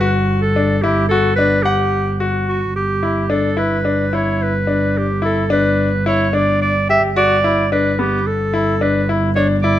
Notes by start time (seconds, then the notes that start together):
Already playing: G1 B4
0.01 F#4
0.42 A4
0.56 D4
0.82 E4 G4
1.09 F#4 A4
1.36 D4 B4
1.63 G4 F#5
2.20 F#4
2.49 F#4
2.75 G1 G4
3.03 E4
3.30 D4 A4
3.57 E4 B4
3.85 D4
4.13 E4 C#5
4.42 B4
4.67 D4
4.98 G4
5.22 E4 A4
5.50 D4 B4
6.06 E4 C#5
6.33 D4 D5
6.62 D5
6.89 G4 E5
7.16 F#4 D5
7.44 E4
7.72 D4 B4
7.99 B3 G4
8.27 G1 A4
8.54 E4
8.81 D4 B4
9.09 E4
9.35 D4 C#5
9.62 E4 D5